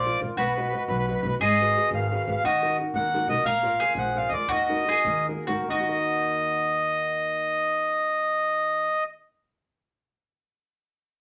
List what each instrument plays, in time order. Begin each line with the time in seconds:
Already playing: nylon-string guitar F3, mandolin F4, accordion D5
0.06 nylon-string guitar F4 A#4 D5
0.21 upright bass A#1, nylon-string guitar F4 A#4 D5
0.37 upright bass B1, nylon-string guitar B3, mandolin F#4, accordion B4
0.46 accordion B4
0.54 nylon-string guitar F#4 B4 D#5, accordion B4
0.61 accordion B4
0.68 accordion B4
0.73 nylon-string guitar F#4 B4 D#5, accordion B4
0.88 upright bass B1, nylon-string guitar F#3, accordion B4
0.99 accordion B4
1.07 nylon-string guitar F#4 B4 D#5, accordion B4
1.15 accordion B4
1.22 upright bass B1, nylon-string guitar F#4, accordion B4
1.27 nylon-string guitar B4 D#5, accordion B4
1.40 upright bass G#1, nylon-string guitar G#3, mandolin G#4, accordion D#5
1.60 nylon-string guitar F#4 G#4 B4
1.77 nylon-string guitar F#4 G#4 B4
1.91 upright bass G#1, nylon-string guitar D#3
1.95 accordion F5
2.01 accordion F5
2.08 nylon-string guitar F#4 G#4 B4, accordion F5
2.16 accordion F5
2.24 upright bass G#1, nylon-string guitar F#4 G#4, accordion F5
2.28 nylon-string guitar B4, accordion F5
2.36 accordion F5
2.44 upright bass D#2, nylon-string guitar D#3, mandolin F#4, accordion D#5
2.62 nylon-string guitar D#4 F#4 A#4
2.80 nylon-string guitar D#4 F#4 A#4
2.94 upright bass D#2, nylon-string guitar A#3, accordion F#5
3.14 nylon-string guitar D#4 F#4 A#4
3.27 upright bass B1, nylon-string guitar D#4 F#4 A#4, accordion D#5
3.44 upright bass A#1, nylon-string guitar A#3, mandolin A#4, accordion F5
3.63 nylon-string guitar F4 A#4 D5
3.80 nylon-string guitar F4 A#4 D5, mandolin G#4
3.95 upright bass A#1, nylon-string guitar F3, accordion F#5
4.15 nylon-string guitar F4 A#4 D5, accordion F5
4.29 upright bass D2, nylon-string guitar A#4, accordion D#5
4.33 nylon-string guitar F4 D5, accordion D5
4.47 upright bass D#2, nylon-string guitar D#3, mandolin F#4
4.52 accordion D#5
4.69 nylon-string guitar D#4 F#4 A#4
4.87 nylon-string guitar D#4 F#4 A#4, mandolin G#4
5.05 upright bass D#2, nylon-string guitar A#3
5.28 nylon-string guitar D#4 F#4 A#4
5.47 upright bass D#2, nylon-string guitar D#4 F#4 A#4, mandolin F#4
5.52 nylon-string guitar D#3
5.61 nylon-string guitar A#3
5.69 upright bass D#2, nylon-string guitar D#4, mandolin F#4, accordion D#5
5.80 nylon-string guitar F#4
5.89 nylon-string guitar A#4